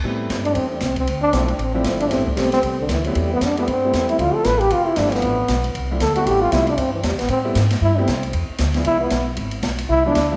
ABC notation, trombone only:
X:1
M:4/4
L:1/8
Q:"Swing" 1/4=231
K:Am
V:1 name="Trombone"
z3 D C A, C C | z D C A, C C z D | C A, C C z D, E, ^F, | G, B, D B, C3 E |
F A B G F E D B,- | B,4 z2 A ^F | G F E D C E, G, B, | C z3 E C2 z |
z4 E B,2 z | z4 E D2 z |]